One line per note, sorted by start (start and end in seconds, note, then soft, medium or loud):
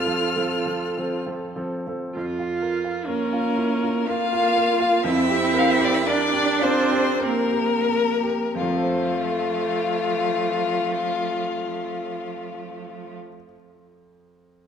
0.00 2.16 F2 medium
0.00 0.06 F3 soft
0.00 0.06 C4 medium
0.00 1.21 F4 loud
0.00 0.07 A4 medium
0.00 1.66 A4 medium
0.00 1.20 F6 loud
0.06 0.33 F3 medium
0.06 0.33 C4 medium
0.06 0.34 A4 medium
0.36 0.63 F3 medium
0.36 0.63 C4 medium
0.36 0.63 A4 medium
0.66 0.93 F3 medium
0.66 0.93 C4 soft
0.66 0.94 A4 medium
0.98 1.23 F3 medium
0.98 1.24 C4 medium
0.98 1.24 A4 medium
1.26 1.53 F3 medium
1.26 1.53 C4 soft
1.26 1.53 A4 medium
1.56 1.83 F3 medium
1.56 1.83 C4 medium
1.56 1.83 A4 medium
1.87 2.13 F3 soft
1.87 2.13 C4 soft
1.87 2.14 A4 medium
2.14 5.02 F2 medium
2.14 3.07 F4 loud
2.39 2.75 F4 medium
2.62 2.98 A#4 medium
2.84 3.22 F4 medium
3.06 4.11 A#3 medium
3.06 4.09 C#4 loud
3.06 4.08 A#4 loud
3.06 3.47 A#4 medium
3.33 3.73 F4 medium
3.56 3.82 E4 medium
3.83 4.23 F4 medium
4.06 5.03 A#3 medium
4.06 5.06 F4 loud
4.06 4.48 A#4 medium
4.06 5.04 F5 loud
4.33 4.72 F4 medium
4.56 4.95 A#4 medium
4.80 5.05 F4 medium
5.03 8.52 F2 loud
5.03 6.06 C4 loud
5.03 6.11 E4 loud
5.03 5.60 E5 loud
5.29 5.71 G4 medium
5.54 5.97 A#4 medium
5.58 5.72 F5 loud
5.70 5.86 E5 loud
5.79 6.24 G4 medium
5.84 5.95 D5 loud
5.94 6.08 E5 loud
6.07 7.24 D4 loud
6.07 6.65 D4 loud
6.07 6.52 A#4 medium
6.07 6.64 D5 loud
6.33 6.80 G4 medium
6.61 7.26 C4 loud
6.61 6.92 F4 medium
6.61 7.24 C5 loud
6.92 7.42 G4 medium
7.20 7.90 C4 medium
7.20 7.74 A#4 medium
7.20 8.57 A#4 loud
7.24 8.55 A#3 medium
7.52 8.09 G4 medium
7.87 8.43 A#4 medium
8.23 8.56 G4 medium
8.54 13.28 F2 medium
8.54 13.15 F3 medium
8.54 13.15 A3 loud
8.54 13.16 F4 loud
8.62 13.35 F3 medium
8.69 13.43 C4 medium
8.76 13.50 A4 medium
8.83 13.56 C5 medium